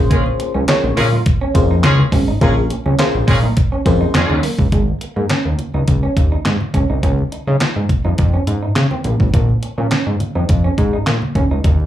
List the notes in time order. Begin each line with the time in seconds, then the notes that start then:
Already playing: A#1 A#3 C#4 F4 G#4 C5
0.11 G#3 A#3 C#4 F4 G#4, kick, closed hi-hat, low conga
0.26 muted conga
0.40 muted clean electric guitar stroke, closed hi-hat
0.54 C#2 C#4, high conga
0.68 A#3 C#4 D#4 F4 G#4 C#5, snare, clap, closed hi-hat, muted conga
0.84 A#1, muted clean electric guitar stroke
0.97 A#2 G#3 C#4 F4 G#4, open hi-hat, low conga
1.12 F4, high conga
1.26 kick, closed hi-hat
1.41 C#4
1.54 F2 A#3 C#4 F4 G#4 C5, muted clean electric guitar stroke, kick, closed hi-hat
1.71 D#4
1.83 C#2 G#3 C#4 F4 G#4, muted clean electric guitar stroke, snare, clap, closed hi-hat, muted conga
1.98 low conga
2.12 G#1 C#4, kick, open hi-hat, high conga
2.28 D#4
2.41 A#1 G#3 A#3 C#4 F4 G#4 A#4, kick, closed hi-hat, muted conga, low conga
2.57 muted conga
2.70 muted clean electric guitar stroke, closed hi-hat
2.86 C#2 C#4, high conga
2.99 A#3 C#4 F4 G#4 C5, snare, clap, closed hi-hat, muted conga
3.14 A#1, muted clean electric guitar stroke, muted conga
3.28 A#2 G#3 C#4 F4 G#4, kick, open hi-hat
3.43 D#4, high conga
3.57 kick, closed hi-hat, muted conga
3.72 C#4
3.85 F2 A#3 C#4 F4 G#4 C5, muted clean electric guitar stroke, kick, closed hi-hat
4.01 D#4, high conga
4.14 F2 G#3 C#4 F4 G#4, muted clean electric guitar stroke, snare, clap, closed hi-hat
4.30 D#2 C#4, muted conga, low conga
4.43 A#3, open hi-hat, high conga
4.59 C#2, kick
4.72 G#1 G#3, kick, closed hi-hat, muted conga, low conga
5.01 muted clean electric guitar stroke, closed hi-hat
5.16 G#2 A#3, high conga
5.29 C#4, snare, clap, closed hi-hat, muted conga
5.45 D#2, muted clean electric guitar stroke
5.59 closed hi-hat, low conga
5.74 C#2 D#4, high conga
5.88 C#2, kick, closed hi-hat, muted conga
6.03 C#4, muted conga
6.17 D#2, muted clean electric guitar stroke, kick, closed hi-hat
6.32 D#4
6.45 G#2, muted clean electric guitar stroke, snare, clap, closed hi-hat, muted conga
6.61 muted conga, low conga
6.74 C#2 C#4, kick, closed hi-hat, high conga
6.90 C2 D#4
7.03 C#2 C#4, kick, closed hi-hat, low conga
7.19 muted conga
7.32 muted clean electric guitar stroke, closed hi-hat
7.47 C#3 D#4, high conga
7.60 F4, snare, clap, closed hi-hat, muted conga
7.76 G#2, muted clean electric guitar stroke, muted conga
7.89 kick, closed hi-hat, low conga
8.04 F2 D#4, high conga
8.18 F2, kick, closed hi-hat
8.34 C#4, muted conga
8.47 G#2, muted clean electric guitar stroke, closed hi-hat
8.63 D#4
8.76 C#3, muted clean electric guitar stroke, snare, clap, closed hi-hat, muted conga
8.91 C4, muted conga, low conga
9.04 A#1 A#3, closed hi-hat, high conga
9.20 G#1, kick
9.34 A#1 A#3, kick, closed hi-hat, muted conga, low conga
9.49 muted conga
9.63 muted clean electric guitar stroke, closed hi-hat
9.78 A#2 C#4, high conga
9.91 C#4, snare, clap, closed hi-hat
10.07 G#2, muted clean electric guitar stroke, muted conga
10.20 closed hi-hat, low conga
10.35 F2 D#4, high conga
10.49 F2, kick, closed hi-hat, muted conga
10.64 C#4, muted conga
10.78 G#2, muted clean electric guitar stroke, kick, closed hi-hat
10.93 D#4
11.07 A#2, muted clean electric guitar stroke, snare, clap, closed hi-hat, muted conga
11.22 muted conga, low conga
11.35 D#2 C#4, kick, closed hi-hat, high conga
11.51 C#2 D#4
11.64 D#2 D#4, kick, closed hi-hat, muted conga, low conga
11.80 muted conga